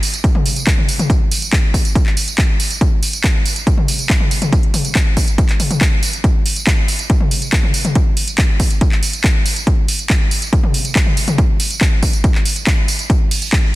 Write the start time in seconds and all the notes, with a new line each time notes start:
0.03 open hi-hat, tambourine
0.14 closed hi-hat, tambourine
0.24 kick, closed hi-hat
0.35 mid tom
0.46 open hi-hat, tambourine
0.56 closed hi-hat, tambourine
0.67 kick, clap, closed hi-hat
0.78 mid tom
0.89 open hi-hat, tambourine
0.99 closed hi-hat, mid tom, tambourine
1.10 kick, closed hi-hat, tambourine
1.31 open hi-hat, tambourine
1.42 closed hi-hat, tambourine
1.53 kick, clap, closed hi-hat
1.74 kick, open hi-hat, tambourine
1.85 closed hi-hat, tambourine
1.95 kick, closed hi-hat, tambourine
2.06 clap
2.17 open hi-hat, tambourine
2.28 closed hi-hat, tambourine
2.38 kick, clap, closed hi-hat
2.60 open hi-hat, tambourine
2.71 closed hi-hat, tambourine
2.81 kick, closed hi-hat, tambourine
3.03 open hi-hat, tambourine
3.13 closed hi-hat, tambourine
3.24 kick, clap, closed hi-hat
3.46 open hi-hat, tambourine
3.56 closed hi-hat, tambourine
3.67 kick, closed hi-hat
3.78 mid tom
3.88 open hi-hat, tambourine
3.99 closed hi-hat, tambourine
4.10 kick, clap, closed hi-hat
4.20 mid tom
4.31 open hi-hat, tambourine
4.42 closed hi-hat, mid tom, tambourine
4.53 kick, closed hi-hat, tambourine
4.63 closed hi-hat
4.74 open hi-hat, mid tom, tambourine
4.85 closed hi-hat, tambourine
4.95 kick, clap, closed hi-hat
5.17 kick, open hi-hat, tambourine
5.28 closed hi-hat, tambourine
5.38 kick, closed hi-hat, tambourine
5.49 clap, closed hi-hat
5.60 open hi-hat, mid tom, tambourine
5.71 closed hi-hat, mid tom, tambourine
5.81 kick, clap, closed hi-hat, tambourine
6.03 open hi-hat, tambourine
6.13 closed hi-hat, tambourine
6.24 kick, closed hi-hat, tambourine
6.46 open hi-hat, tambourine
6.56 closed hi-hat, tambourine
6.67 kick, clap, closed hi-hat
6.88 open hi-hat, tambourine
6.99 closed hi-hat, tambourine
7.10 kick, closed hi-hat
7.21 mid tom
7.31 open hi-hat, tambourine
7.42 closed hi-hat, tambourine
7.53 kick, clap, closed hi-hat
7.63 mid tom
7.74 open hi-hat, tambourine
7.85 closed hi-hat, mid tom, tambourine
7.95 kick, closed hi-hat, tambourine
8.17 open hi-hat, tambourine
8.28 closed hi-hat, tambourine
8.38 kick, clap, closed hi-hat
8.60 kick, open hi-hat, tambourine
8.70 closed hi-hat, tambourine
8.81 kick, closed hi-hat, tambourine
8.92 clap
9.03 open hi-hat, tambourine
9.13 closed hi-hat, tambourine
9.24 kick, clap, closed hi-hat
9.46 open hi-hat, tambourine
9.56 closed hi-hat, tambourine
9.67 kick, closed hi-hat
9.88 open hi-hat, tambourine
9.99 closed hi-hat, tambourine
10.10 kick, clap, closed hi-hat
10.31 open hi-hat, tambourine
10.42 closed hi-hat, tambourine
10.53 kick, closed hi-hat
10.63 mid tom
10.74 open hi-hat, tambourine
10.85 closed hi-hat, tambourine
10.96 kick, clap, closed hi-hat
11.06 mid tom
11.17 open hi-hat, tambourine
11.28 closed hi-hat, mid tom, tambourine
11.38 kick, closed hi-hat, tambourine
11.60 open hi-hat, tambourine
11.71 closed hi-hat, tambourine
11.81 kick, clap, closed hi-hat
12.03 kick, open hi-hat, tambourine
12.13 closed hi-hat, tambourine
12.24 kick, closed hi-hat, tambourine
12.35 clap
12.45 open hi-hat, tambourine
12.56 closed hi-hat, tambourine
12.67 kick, clap, closed hi-hat, tambourine
12.88 open hi-hat, tambourine
12.99 closed hi-hat, tambourine
13.10 kick, closed hi-hat, tambourine
13.31 open hi-hat, ride, tambourine
13.42 closed hi-hat, tambourine
13.53 kick, clap, closed hi-hat